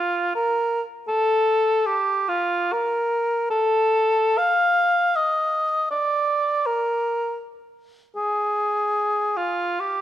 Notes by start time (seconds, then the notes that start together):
Already playing: F4
0.35 A#4
1.08 A4
1.86 G4
2.29 F4
2.72 A#4
3.50 A4
4.38 F5
5.16 D#5
5.91 D5
6.66 A#4
8.16 G#4
9.37 F4
9.80 G4